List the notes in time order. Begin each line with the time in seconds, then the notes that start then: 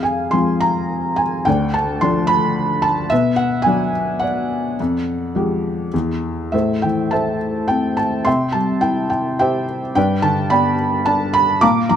Already playing: F2 G#4 F5
0.03 G#5
0.31 F3 G#3 C4 C6
0.60 A#5
1.16 G#5
1.45 D2 D5 G5
1.74 A5
2.01 F3 A3 D4 C6
2.27 B5
2.82 A5
3.10 B2 B4 E5
3.36 F#5
3.62 F#3 G#5
3.67 B3 D4
4.19 D5 F#5
4.80 F2
5.35 F3 G#3 G4
5.94 E2
6.52 A2 A4 C5 E5
6.82 E3 G5
7.11 A3 C5 E5 A5
7.68 C4 G5
7.97 A5
8.25 C3 E5 G5 C6
8.52 G3 A5
8.81 E4 G5
9.10 G5
9.39 G4 C5 E5 G5
9.95 G2 B4 D5 G5
10.22 D3 A5
10.50 B3 D5 G5 B5
11.06 D4 A5
11.34 B5
11.61 A#2 F5 A#5 D6
11.89 F3 A#5